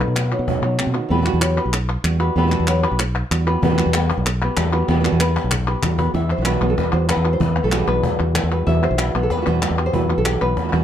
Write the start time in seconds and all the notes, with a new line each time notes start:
Already playing: B2 F#3 A4 B4
0.00 B3 D#4 F#4, cajon slap
0.08 B2
0.16 muted nylon-string guitar stroke, cajon slap, clap
0.32 F#3 B3 D#4 F#4
0.39 B2
0.47 B2 F#3 B3 D#4 F#4, cajon bass
0.62 B2 F#3 B3 D#4 F#4
0.79 C3, muted nylon-string guitar stroke, cajon slap, clap
0.87 B2
0.95 D#3 B3 D#4 F#4
1.09 E2 B2 E3 G3 B3 G4 B4
1.13 F#4
1.17 E3 G3 B3 F#4
1.21 E3 G3 B3 F#4
1.26 B2 E3 G3 B3 F#4, clap
1.33 E2
1.41 F#3 B3 F#4 G4 B4, clap
1.57 B3 G4 B4
1.65 B1
1.73 muted nylon-string guitar stroke, clap
2.04 E2 E3 G3 B3 F#4, clap
2.20 G3 B3 F#4 G4 B4
2.36 E2 B2 E3 G3 B3 F#4 G4 B4
2.42 E3 G3 B3 F#4
2.47 E3 G3 B3 F#4
2.51 B2 E3 G3 B3 F#4, clap
2.60 E2
2.67 F#3 G3 B3 F#4 G4 B4, clap
2.83 B3 G4 B4
2.92 B1
2.99 muted nylon-string guitar stroke, clap
3.31 E2 E3 G3 B3 F#4, clap
3.47 G3 B3 F#4 G4 B4
3.62 E2 B2 E3 G3 B3 F#4 G4 B4, cajon bass
3.66 E3 G3 F#4
3.70 E3 B3 F#4
3.74 G3 B3 F#4
3.78 B2 E3 G3 B3 F#4, clap
3.86 E2
3.94 G3 B3 G4 B4, cajon slap, clap
4.10 cajon bass, cajon slap
4.17 B1
4.26 muted nylon-string guitar stroke, clap
4.42 B3 G4 B4
4.57 E2 E3 G3 B3 F#4, cajon slap, clap
4.72 G3 B3 F#4 G4 B4
4.88 E2 B2 E3 G3 B3 G4 B4, cajon slap
4.92 E3 G3 B3 F#4
4.97 E3 G3 F#4
5.01 B2 E3 B3 F#4, cajon slap
5.05 G3 B3 F#4, clap
5.12 E2
5.19 B3 G4 B4, cajon slap, clap
5.36 cajon slap, clap
5.44 B1
5.51 muted nylon-string guitar stroke, cajon bass, clap
5.67 B3 G4 B4
5.83 E2 E3 G3 B3 F#4, cajon bass, clap
5.98 G3 B3 F#4 G4 B4, cajon bass
6.14 E2 E3 E5, muted nylon-string guitar stroke, cajon bass, cajon slap
6.31 C5, cajon slap
6.37 B1 E3 G3 B3 F#4
6.41 E3 G3 B3 F#4
6.45 B2 E3 G3 B3 F#4 B4, cajon slap, clap
6.61 B1 B3
6.70 A4
6.77 B2 E3 G3 B3 F#4 B4, cajon bass, cajon slap
6.92 E2 G3 B3 F#4 C5
7.08 E3 B4, muted nylon-string guitar stroke, cajon slap, clap
7.17 E2
7.24 G3 B3 F#4
7.33 C5
7.40 E2 E3 B4, muted nylon-string guitar stroke, cajon bass
7.57 B3, cajon slap
7.63 B1 E3 G3 B3 F#4 A4
7.67 E3 G3 B3 F#4
7.72 B2 E3 G3 B3 F#4 G4, cajon slap, clap
7.87 B1 B3 B4
8.03 B2 E3 G3 B3 F#4, cajon bass
8.19 E2 G3 B3 F#4
8.35 E3, muted nylon-string guitar stroke, cajon slap, clap
8.43 E2
8.51 G3 B3 F#4 B4
8.66 E2 B2 E3 G3 B3 F#4 E5, cajon bass, cajon slap
8.82 G3 B3 F#4 C5
8.91 B1
8.98 G3 B3 F#4 B4, cajon slap, clap
9.15 B1 B3, clap
9.23 A4
9.30 B4, muted nylon-string guitar stroke, cajon bass, cajon slap
9.37 E3 G3 B3 F#4
9.41 E3 G3 B3 F#4
9.46 E2 B2 E3 G3 B3 F#4 C5
9.61 E3 G3 B3 F#4 B4, cajon slap, clap
9.70 E2
9.78 G3 B3 F#4 G4
9.86 C5
9.93 E2 B2 E3 G3 B3 F#4 B4, cajon bass
10.09 G3 B3 F#4
10.18 B1 A4
10.25 G3 B3 F#4 G4, cajon slap, clap
10.41 B1 B3 B4
10.57 B3, muted nylon-string guitar stroke, cajon bass, cajon slap
10.64 E3 G3 B3 F#4
10.68 E3 G3 B3 F#4
10.73 E2 B2 E3 G3 B3 F#4